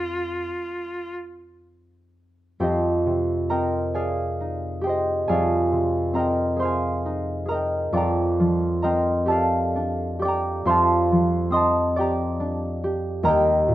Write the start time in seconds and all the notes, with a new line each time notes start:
Already playing: F2 C4 D#4 F4 G#4
2.60 F2 G4 C5 D#5 G5
3.06 C3
3.49 C4 A#4 D#5 G5 A#5
3.94 G#4 D5 F5 G#5
4.41 D#4
4.81 G4 G#4 G5
4.86 C5 D#5
5.28 F2 G#4 D5 F5 G#5
5.72 C3
6.13 C4 A#4 D#5 A#5
6.18 G5
6.56 G#4 C5 C6
6.62 F5 G#5
7.06 D#4
7.46 G#4 A#4 A#5
7.51 D#5 G5
7.92 F2 D5 G5 D6
7.97 A#5
8.40 F3
8.82 C4 A#4 D#5 G5 A#5
9.26 G4 A4 A5
9.30 D5 F5
9.76 D4
10.19 G4 D5 D6
10.25 G5 A#5
10.65 F2 C5 F5 C6
10.70 A5
11.12 F3
11.50 C4 D#5 C6 D#6
11.56 A5
11.96 G4 D5 G5 D6
12.00 A#5
12.40 D4
12.84 G4
13.23 D#2 A#4 D#5 A#5
13.28 G5
13.68 A#2